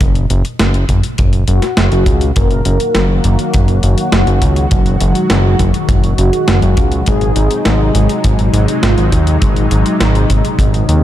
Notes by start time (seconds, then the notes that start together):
0.01 F#1, kick, closed hi-hat
0.15 closed hi-hat
0.30 F#1, closed hi-hat
0.45 closed hi-hat
0.59 F#1, snare, closed hi-hat
0.74 closed hi-hat
0.89 F#1, kick, closed hi-hat
1.03 closed hi-hat
1.18 F#1, kick, closed hi-hat
1.33 closed hi-hat
1.48 F#1 F#4, closed hi-hat
1.62 snare, closed hi-hat
1.77 F#1, snare, closed hi-hat
1.92 F#1, closed hi-hat
2.06 C#2, kick, closed hi-hat
2.21 closed hi-hat
2.36 F#1 D#3 F#3 A#3 F#4 A#4, kick, closed hi-hat
2.51 closed hi-hat
2.65 F#1, closed hi-hat
2.80 closed hi-hat
2.95 F#1, snare, closed hi-hat
3.24 F#1, closed hi-hat
3.39 closed hi-hat
3.54 F#1, kick, closed hi-hat
3.68 closed hi-hat
3.83 F#1, closed hi-hat
3.98 closed hi-hat
4.12 F#1 F#4, snare, closed hi-hat
4.27 F#1, closed hi-hat
4.42 C#2, kick, closed hi-hat
4.56 closed hi-hat
4.71 F#1 G#3, kick, closed hi-hat
4.86 closed hi-hat
5.00 F#1, closed hi-hat
5.15 closed hi-hat
5.30 F#1, snare, closed hi-hat
5.59 F#1, kick, closed hi-hat
5.74 closed hi-hat
5.89 F#1, kick, closed hi-hat
6.04 closed hi-hat
6.18 F#1 F#4, closed hi-hat
6.33 closed hi-hat
6.48 F#1, snare, closed hi-hat
6.62 F#1, closed hi-hat
6.77 C#2, kick, closed hi-hat
6.92 closed hi-hat
7.06 G#1 C3 F#3 D#4 G#4, kick, closed hi-hat
7.21 closed hi-hat
7.36 G#1, closed hi-hat
7.51 closed hi-hat
7.65 G#1, snare, closed hi-hat
7.95 G#1, closed hi-hat
8.09 closed hi-hat
8.24 G#1, kick, closed hi-hat
8.39 closed hi-hat
8.53 G#1, closed hi-hat
8.68 closed hi-hat
8.83 G#1 F4, snare, closed hi-hat
8.98 G#1, closed hi-hat
9.12 D#2, kick, closed hi-hat
9.27 closed hi-hat
9.42 G#1, kick, closed hi-hat
9.56 closed hi-hat
9.71 G#1, closed hi-hat
9.86 closed hi-hat
10.01 G#1, snare, closed hi-hat
10.15 closed hi-hat
10.30 G#1, kick, closed hi-hat
10.45 closed hi-hat
10.59 G#1, kick, closed hi-hat
10.74 closed hi-hat
10.89 D#2 C4, closed hi-hat